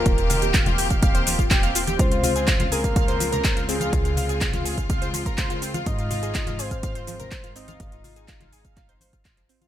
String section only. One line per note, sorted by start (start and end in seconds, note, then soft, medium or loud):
0.00 1.95 D#3 medium
0.00 1.96 A#3 medium
0.00 1.95 G4 medium
0.06 9.68 C4 medium
1.99 5.83 C#3 medium
1.99 9.68 G#3 medium
1.99 7.76 F4 medium
7.80 9.68 D#4 medium